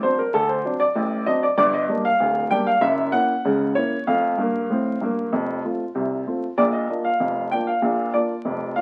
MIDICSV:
0, 0, Header, 1, 2, 480
1, 0, Start_track
1, 0, Key_signature, -2, "major"
1, 0, Tempo, 624350
1, 261, Time_signature, 2, 2, 24, 8
1, 6776, End_track
2, 0, Start_track
2, 0, Title_t, "Upright piano"
2, 0, Program_c, 0, 0
2, 22, Note_on_c, 0, 72, 82
2, 27, Note_on_c, 0, 54, 45
2, 29, Note_on_c, 0, 60, 41
2, 32, Note_on_c, 0, 62, 49
2, 142, Note_off_c, 0, 72, 0
2, 143, Note_on_c, 0, 70, 71
2, 157, Note_off_c, 0, 54, 0
2, 158, Note_off_c, 0, 60, 0
2, 161, Note_off_c, 0, 62, 0
2, 260, Note_on_c, 0, 69, 93
2, 261, Note_on_c, 0, 38, 70
2, 262, Note_off_c, 0, 70, 0
2, 262, Note_on_c, 0, 50, 78
2, 378, Note_on_c, 0, 72, 70
2, 380, Note_off_c, 0, 69, 0
2, 464, Note_off_c, 0, 38, 0
2, 465, Note_off_c, 0, 50, 0
2, 497, Note_on_c, 0, 54, 46
2, 501, Note_on_c, 0, 60, 43
2, 504, Note_on_c, 0, 62, 52
2, 571, Note_off_c, 0, 72, 0
2, 612, Note_on_c, 0, 74, 84
2, 630, Note_off_c, 0, 54, 0
2, 632, Note_off_c, 0, 60, 0
2, 634, Note_off_c, 0, 62, 0
2, 734, Note_on_c, 0, 33, 71
2, 735, Note_on_c, 0, 45, 66
2, 940, Note_off_c, 0, 33, 0
2, 940, Note_off_c, 0, 45, 0
2, 956, Note_off_c, 0, 74, 0
2, 972, Note_on_c, 0, 54, 49
2, 972, Note_on_c, 0, 75, 90
2, 975, Note_on_c, 0, 60, 52
2, 980, Note_on_c, 0, 62, 51
2, 1094, Note_off_c, 0, 75, 0
2, 1099, Note_on_c, 0, 74, 81
2, 1105, Note_off_c, 0, 54, 0
2, 1107, Note_off_c, 0, 60, 0
2, 1111, Note_off_c, 0, 62, 0
2, 1200, Note_off_c, 0, 74, 0
2, 1212, Note_on_c, 0, 43, 86
2, 1212, Note_on_c, 0, 74, 101
2, 1213, Note_on_c, 0, 31, 80
2, 1334, Note_off_c, 0, 74, 0
2, 1336, Note_on_c, 0, 75, 81
2, 1417, Note_off_c, 0, 43, 0
2, 1418, Note_off_c, 0, 31, 0
2, 1454, Note_on_c, 0, 55, 49
2, 1456, Note_on_c, 0, 58, 54
2, 1457, Note_on_c, 0, 62, 58
2, 1528, Note_off_c, 0, 75, 0
2, 1575, Note_on_c, 0, 77, 95
2, 1586, Note_off_c, 0, 55, 0
2, 1588, Note_off_c, 0, 58, 0
2, 1588, Note_off_c, 0, 62, 0
2, 1691, Note_on_c, 0, 38, 68
2, 1693, Note_on_c, 0, 26, 72
2, 1862, Note_off_c, 0, 77, 0
2, 1896, Note_off_c, 0, 38, 0
2, 1897, Note_off_c, 0, 26, 0
2, 1927, Note_on_c, 0, 79, 98
2, 1931, Note_on_c, 0, 55, 54
2, 1934, Note_on_c, 0, 58, 50
2, 1937, Note_on_c, 0, 62, 58
2, 2050, Note_off_c, 0, 79, 0
2, 2050, Note_on_c, 0, 77, 89
2, 2063, Note_off_c, 0, 55, 0
2, 2065, Note_off_c, 0, 58, 0
2, 2067, Note_off_c, 0, 62, 0
2, 2162, Note_on_c, 0, 30, 75
2, 2163, Note_on_c, 0, 42, 78
2, 2163, Note_on_c, 0, 76, 100
2, 2172, Note_off_c, 0, 77, 0
2, 2359, Note_off_c, 0, 76, 0
2, 2370, Note_off_c, 0, 30, 0
2, 2371, Note_off_c, 0, 42, 0
2, 2400, Note_on_c, 0, 78, 93
2, 2402, Note_on_c, 0, 58, 49
2, 2406, Note_on_c, 0, 61, 54
2, 2410, Note_on_c, 0, 64, 52
2, 2537, Note_off_c, 0, 58, 0
2, 2541, Note_off_c, 0, 61, 0
2, 2543, Note_off_c, 0, 64, 0
2, 2651, Note_on_c, 0, 37, 66
2, 2654, Note_on_c, 0, 49, 66
2, 2857, Note_off_c, 0, 37, 0
2, 2859, Note_off_c, 0, 49, 0
2, 2864, Note_off_c, 0, 78, 0
2, 2884, Note_on_c, 0, 73, 85
2, 2887, Note_on_c, 0, 58, 46
2, 2889, Note_on_c, 0, 61, 41
2, 2891, Note_on_c, 0, 64, 48
2, 3022, Note_off_c, 0, 58, 0
2, 3024, Note_off_c, 0, 61, 0
2, 3025, Note_off_c, 0, 64, 0
2, 3082, Note_off_c, 0, 73, 0
2, 3130, Note_on_c, 0, 77, 80
2, 3132, Note_on_c, 0, 41, 66
2, 3145, Note_on_c, 0, 57, 66
2, 3327, Note_off_c, 0, 41, 0
2, 3335, Note_off_c, 0, 57, 0
2, 3367, Note_on_c, 0, 43, 64
2, 3382, Note_on_c, 0, 58, 65
2, 3565, Note_off_c, 0, 43, 0
2, 3574, Note_off_c, 0, 58, 0
2, 3615, Note_on_c, 0, 45, 63
2, 3628, Note_on_c, 0, 60, 58
2, 3810, Note_off_c, 0, 45, 0
2, 3818, Note_off_c, 0, 60, 0
2, 3855, Note_on_c, 0, 43, 57
2, 3868, Note_on_c, 0, 58, 62
2, 4050, Note_off_c, 0, 43, 0
2, 4058, Note_off_c, 0, 58, 0
2, 4094, Note_on_c, 0, 41, 69
2, 4096, Note_on_c, 0, 29, 60
2, 4290, Note_off_c, 0, 77, 0
2, 4302, Note_off_c, 0, 41, 0
2, 4303, Note_off_c, 0, 29, 0
2, 4340, Note_on_c, 0, 57, 38
2, 4341, Note_on_c, 0, 60, 33
2, 4346, Note_on_c, 0, 65, 42
2, 4473, Note_off_c, 0, 57, 0
2, 4474, Note_off_c, 0, 60, 0
2, 4477, Note_off_c, 0, 65, 0
2, 4574, Note_on_c, 0, 36, 55
2, 4577, Note_on_c, 0, 48, 59
2, 4783, Note_off_c, 0, 36, 0
2, 4784, Note_off_c, 0, 48, 0
2, 4818, Note_on_c, 0, 57, 34
2, 4822, Note_on_c, 0, 60, 39
2, 4826, Note_on_c, 0, 65, 42
2, 4952, Note_off_c, 0, 57, 0
2, 4955, Note_off_c, 0, 60, 0
2, 4958, Note_off_c, 0, 65, 0
2, 5056, Note_on_c, 0, 74, 87
2, 5057, Note_on_c, 0, 46, 74
2, 5058, Note_on_c, 0, 34, 66
2, 5174, Note_on_c, 0, 75, 64
2, 5181, Note_off_c, 0, 74, 0
2, 5265, Note_off_c, 0, 34, 0
2, 5265, Note_off_c, 0, 46, 0
2, 5294, Note_on_c, 0, 58, 42
2, 5298, Note_on_c, 0, 62, 40
2, 5303, Note_on_c, 0, 65, 40
2, 5407, Note_off_c, 0, 75, 0
2, 5416, Note_on_c, 0, 77, 75
2, 5429, Note_off_c, 0, 58, 0
2, 5432, Note_off_c, 0, 62, 0
2, 5436, Note_off_c, 0, 65, 0
2, 5535, Note_on_c, 0, 41, 57
2, 5536, Note_on_c, 0, 29, 59
2, 5708, Note_off_c, 0, 77, 0
2, 5744, Note_off_c, 0, 29, 0
2, 5744, Note_off_c, 0, 41, 0
2, 5777, Note_on_c, 0, 79, 83
2, 5781, Note_on_c, 0, 58, 38
2, 5783, Note_on_c, 0, 62, 42
2, 5788, Note_on_c, 0, 65, 45
2, 5895, Note_on_c, 0, 77, 69
2, 5901, Note_off_c, 0, 79, 0
2, 5914, Note_off_c, 0, 58, 0
2, 5916, Note_off_c, 0, 62, 0
2, 5919, Note_off_c, 0, 65, 0
2, 6013, Note_on_c, 0, 34, 62
2, 6014, Note_on_c, 0, 46, 68
2, 6222, Note_off_c, 0, 34, 0
2, 6223, Note_off_c, 0, 46, 0
2, 6242, Note_off_c, 0, 77, 0
2, 6255, Note_on_c, 0, 58, 45
2, 6255, Note_on_c, 0, 74, 77
2, 6259, Note_on_c, 0, 62, 45
2, 6261, Note_on_c, 0, 65, 46
2, 6390, Note_off_c, 0, 58, 0
2, 6393, Note_off_c, 0, 62, 0
2, 6394, Note_off_c, 0, 65, 0
2, 6495, Note_on_c, 0, 29, 60
2, 6497, Note_on_c, 0, 41, 59
2, 6643, Note_off_c, 0, 74, 0
2, 6703, Note_off_c, 0, 29, 0
2, 6704, Note_off_c, 0, 41, 0
2, 6734, Note_on_c, 0, 77, 80
2, 6738, Note_on_c, 0, 58, 41
2, 6741, Note_on_c, 0, 62, 43
2, 6743, Note_on_c, 0, 65, 48
2, 6776, Note_off_c, 0, 58, 0
2, 6776, Note_off_c, 0, 62, 0
2, 6776, Note_off_c, 0, 65, 0
2, 6776, Note_off_c, 0, 77, 0
2, 6776, End_track
0, 0, End_of_file